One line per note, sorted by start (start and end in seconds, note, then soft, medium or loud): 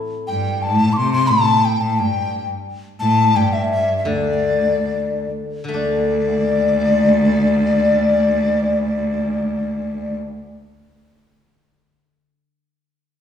0.00 0.63 A2 soft
0.00 0.12 E3 soft
0.00 0.30 A3 soft
0.00 0.47 C4 soft
0.00 0.64 E4 soft
0.27 0.66 G2 medium
0.27 0.64 G5 medium
0.63 0.97 A2 medium
0.63 0.94 A5 medium
0.93 1.13 C6 medium
0.93 0.98 D6 medium
0.98 1.32 C3 medium
1.13 1.31 C6 medium
1.29 1.80 A2 medium
1.29 1.66 A5 medium
1.65 1.82 G5 medium
1.81 2.01 A2 medium
1.81 2.01 A5 medium
1.99 2.49 G2 medium
1.99 2.49 G5 medium
3.00 3.36 A2 medium
3.00 3.38 A5 medium
3.35 4.07 G2 medium
3.35 3.54 G5 medium
3.53 3.70 E5 medium
3.72 3.97 E5 medium
3.98 4.09 E5 soft
4.05 5.29 D2 medium
4.05 5.63 D3 soft
4.05 5.29 D5 medium
5.64 12.27 D3 soft
5.68 11.34 A3 soft
5.74 10.15 D2 medium
5.74 10.50 D4 soft
5.74 10.16 D5 medium